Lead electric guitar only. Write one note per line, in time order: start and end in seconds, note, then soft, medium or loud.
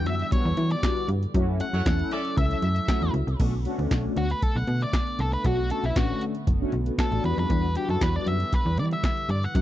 0.07 0.32 E5 loud
0.32 0.71 C#5 medium
0.72 1.07 D5 medium
1.61 2.13 F#5 loud
2.13 2.38 D5 loud
2.38 3.10 E5 medium
4.18 4.30 F#4 loud
4.31 4.43 B4 medium
4.43 4.56 A4 loud
4.56 4.83 F#5 loud
4.82 5.21 D5 loud
5.20 5.32 A4 medium
5.33 5.45 B4 medium
5.46 5.69 F#4 medium
5.71 5.85 A4 medium
5.85 5.97 E4 medium
5.97 6.22 F#4 medium
7.00 7.23 A4 medium
7.26 7.38 B4 medium
7.39 7.76 B4 medium
7.77 7.90 G4 medium
7.90 8.01 A4 medium
8.02 8.16 B4 medium
8.16 8.27 D5 medium
8.28 8.54 E5 loud
8.54 8.77 B4 medium
8.79 8.84 D5 medium
8.93 9.04 E5 loud
9.05 9.28 E5 loud
9.31 9.44 D5 medium
9.44 9.55 F#5 loud
9.56 9.62 F#5 loud